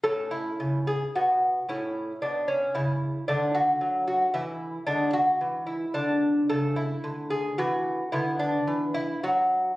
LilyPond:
<<
  \new Staff \with { instrumentName = "Lute" } { \time 12/8 \key a \major \tempo 4. = 74 a'8 e'4 gis'8 fis'4 e'4 d'8 cis'8 e'4 | d'8 fis'4 fis'8 e'4 d'8 fis'4 e'8 d'4 | a'8 e'4 gis'8 fis'4 e'8 d'4 e'8 fis'4 | }
  \new Staff \with { instrumentName = "Lute" } { \clef bass \time 12/8 \key a \major << { cis'2. cis'2. | a2. gis2. | a2. b2. | } \\ { a,4 cis4 b,4 a,4 b,4 cis4 | d4 fis4 e4 d4 e4 d4 | cis4 d4 e4 d4 e4 fis4 | } >> }
>>